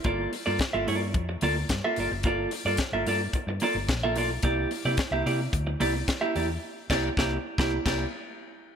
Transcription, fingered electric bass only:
X:1
M:4/4
L:1/16
Q:1/4=109
K:Gdor
V:1 name="Fingered electric bass" clef=bass
G,,,2 z G,, z G,,, G,,2 F,,2 D,,2 G,, z G,,, ^F,,, | G,,,2 z G,, z G,,, G,,2 z G,, z G,,, B,,,2 =B,,,2 | C,,2 z C, z C,, C,2 D,,2 C,,2 z2 E,,2 | z2 C,,2 C,,2 z C,,2 C,,2 z4 z |]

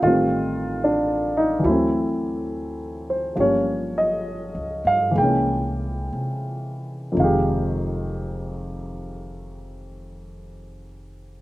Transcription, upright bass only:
X:1
M:4/4
L:1/8
Q:"Swing" 1/4=64
K:Fm
V:1 name="Upright bass" clef=bass
=A,,,4 =D,,4 | G,,,2- (3G,,, D,, G,, C,,2 C,2 | F,,,8 |]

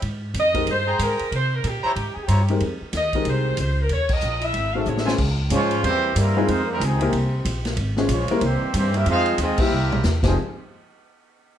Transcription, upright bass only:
X:1
M:4/4
L:1/8
Q:"Swing" 1/4=186
K:Ab
V:1 name="Upright bass" clef=bass
A,,2 F,,2 G,,2 A,, z | C,2 B,, z A,, z G,,2 | F,, z E,,2 C,,2 D,,2 | E,,2 B,,,2 A,,,2 =A,,,2 |
[K:Fm] D,,2 A,,2 =E,,2 G,,2 | F,,2 D,,2 C,,2 B,,,2 | A,,,2 B,,, z C,, z G,,2 | F,,2 E,, z C,,2 =E,, F,,, |
z8 |]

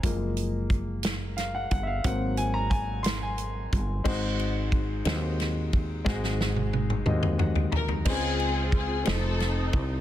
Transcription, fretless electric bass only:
X:1
M:6/8
L:1/8
Q:3/8=60
K:Abmix
V:1 name="Fretless electric bass" clef=bass
G,,,4- G,,, =G,,, | A,,,4- A,,, =G,,, | A,,,3 E,,3 | A,,,3 E,,3 |
D,,3 F,,,2 C,, |]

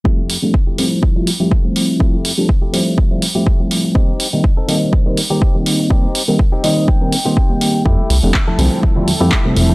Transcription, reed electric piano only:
X:1
M:4/4
L:1/16
Q:"Swing 16ths" 1/4=123
K:F
V:1 name="Reed electric piano"
[F,G,A,CE] z2 [F,G,A,CD] z2 [F,G,A,CE]3 [F,G,A,CE] z [F,G,A,CE] z [F,G,A,CE]3 | [F,G,A,CE] z2 [F,G,A,CD] z2 [F,G,A,CE]3 [F,G,A,CE] z [F,G,A,CE] z [F,G,A,CE]3 | [_E,G,B,C_E] z2 [E,G,B,CE] z2 [E,G,B,CE]3 [E,G,B,CE] z [E,G,B,CE] z [E,G,B,CE]3 | [_E,G,B,C_E] z2 [E,G,B,CE] z2 [E,G,B,CE]3 [E,G,B,CE] z [E,G,B,CE] z [E,G,B,CE]3 |
[F,G,A,CE] z2 [F,G,A,CD] z2 [F,G,A,CE]3 [F,G,A,CE] z [F,G,A,CE] z [F,G,A,CE]3 |]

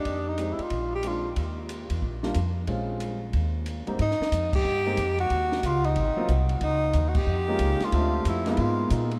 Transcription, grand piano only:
X:1
M:4/4
L:1/8
Q:"Swing" 1/4=183
K:Eb
V:1 name="Grand piano"
z2 [A,CEG] z3 [A,CDF] z | z4 z [G,B,DF] z2 | [A,C_DF]3 z4 [A,,G,B,CE] | [K:Ab] z4 z [A,B,CEG] z2 |
z4 z [_G,B,CEF] z2 | z4 z [A,B,DEF]3 | [=A,C=DF_f]3 [_A,B,_CE=F]3 [A,B,CEF] z |]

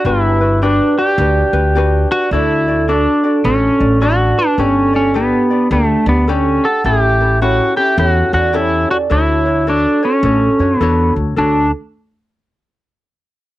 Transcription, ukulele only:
X:1
M:4/4
L:1/8
Q:"Swing" 1/4=106
K:D
V:1 name="Ukulele"
[DFGB] [DFB] [DFGB] [DFB] [DFGB] [DFB] [DFGB]2 | [DFAd] [DFd] [DFAd] [DFd] [DFAd] [DFd] [DFAd]2 | [DGAd] [DGd] [DGAd] [DGd] [DGAd] [DGd] [DGAd]2 | [CEGA] [CEA] [CEGA] [CEA] [CEGA] [CEA] [CEGA]2 |
[DFAc] [DFc] [DFAc] [DFc] [DFAc] [DFc] [DFAc]2 | [DFAc] z6 z |]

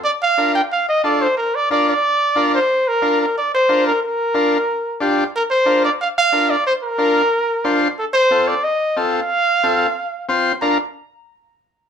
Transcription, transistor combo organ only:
X:1
M:4/4
L:1/8
Q:1/4=182
K:Bb
V:1 name="Transistor combo organ"
z2 [DFB] z3 [DFA] z | z2 [DFB] z3 [DFB] z | z2 [DFB] z3 [DFB] z | z2 [DFB] z3 [DFG] z |
z2 [DFB] z3 [DFB] z | z2 [DFB] z3 [DFc] z | z2 [CFA] z3 [CFA] z | z2 [CFA] z3 [CFc] z |
[DFB] z6 z |]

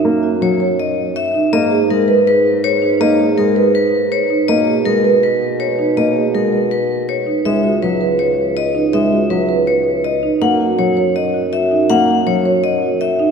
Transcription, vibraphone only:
X:1
M:4/4
L:1/8
Q:1/4=162
K:F#mix
V:1 name="Vibraphone"
z2 c z d z e z | d z A z B z c z | d z A z B z c z | d z A z B z c z |
d z A z B z c z | e z B z c z d z | e z B z c z d z | f z c z d z e z |
f z c z d z e z |]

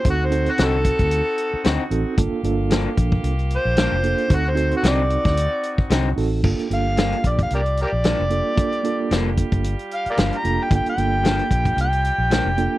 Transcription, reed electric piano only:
X:1
M:4/4
L:1/8
Q:"Swing 16ths" 1/4=113
K:Gm
V:1 name="Reed electric piano"
[CE^FA] [CEFA]3 z3 [CEFA] | [B,DFA] [B,DFA]3 z3 [B,DFA] | [CE^FA] [CEFA]3 z3 [CEFA] | [B,DFA] [B,DFA]3 z3 [B,DFA] |
[B,DFA] [B,DFA]3 z3 [B,DFA] | [B,DFA] [B,DFA]3 z3 [B,DFA] |]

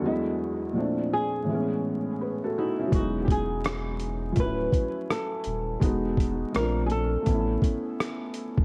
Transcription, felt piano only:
X:1
M:4/4
L:1/16
Q:"Swing 16ths" 1/4=83
K:E
V:1 name="Felt piano"
[=DF] z8 z3 [GB] [FA] [^DF] [CE]- | [CE] z12 z3 | z16 |]
V:2 name="Felt piano"
[E,,F,G,B,d]4 [^A,,^E,=A,=C=D]4 [=A,,=E,G,B,^C]8 | [F,G,B,D]8 [=F,^F,A,CE]8 | [G,B,DF]4 [A,=C=D^E]4 [A,B,^C=E]8 |]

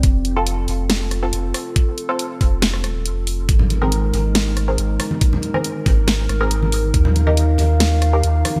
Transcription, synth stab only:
X:1
M:4/4
L:1/16
Q:1/4=139
K:Fdor
V:1 name="Synth stab"
z3 [CF=A]8 [CFA] z4 | z3 [CF=A]8 z4 z | z3 [CAB]8 [CAB] z4 | z3 [CAB]8 [CAB] z4 |
z3 [EGB]8 [EGB] z4 |]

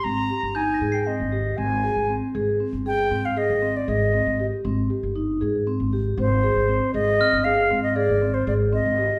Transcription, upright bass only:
X:1
M:9/8
L:1/16
Q:3/8=78
K:Ablyd
V:1 name="Upright bass" clef=bass
A,,,2 z G,,,3 A,,3 A,,,3 A,,,3 A,,,2 z | A,,,2 z G,,,3 A,,3 A,,,3 A,,,3 A,,,2 z | A,,,2 z G,,,3 A,,3 A,,,3 A,,,3 A,,,2 z | A,,,2 z G,,,3 A,,3 A,,,3 A,,,3 A,,,2 z |]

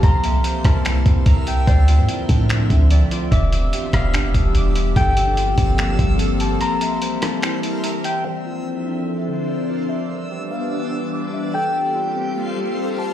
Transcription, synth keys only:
X:1
M:4/4
L:1/8
Q:1/4=146
K:Dm
V:1 name="Synth keys"
c' e c B E C b e | d F E D C D, d F | d' e' G =B, D E, d' e | A G F C B, G, A G |
c' e c B E C b e | d F E D C D, d F | d' e' G =B, D E, d' e | A G F C B, G, A G |]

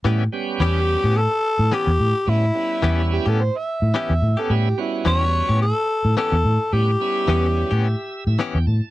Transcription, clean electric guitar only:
X:1
M:4/4
L:1/16
Q:"Swing 16ths" 1/4=108
K:Amix
V:1 name="Clean electric guitar"
[E,B,CG] z3 [E,B,CG] z2 [B,CG] z4 [E,B,CG] z3 | z4 [E,B,CG] z2 [B,CG] z4 [E,B,CG] z2 [B,CG] | z4 [E,B,CG] z2 [B,CG] z4 [E,B,CG] z3 | z4 [E,B,CG] z2 [B,CG] z4 [E,B,CG] z3 |]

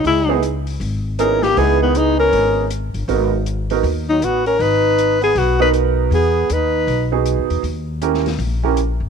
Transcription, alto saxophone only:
X:1
M:4/4
L:1/8
Q:"Swing" 1/4=158
K:G#m
V:1 name="Alto saxophone"
E2 z4 A =G | G B, D A3 z2 | z4 z D F A | B3 G F B z2 |
G2 B3 z3 | z8 |]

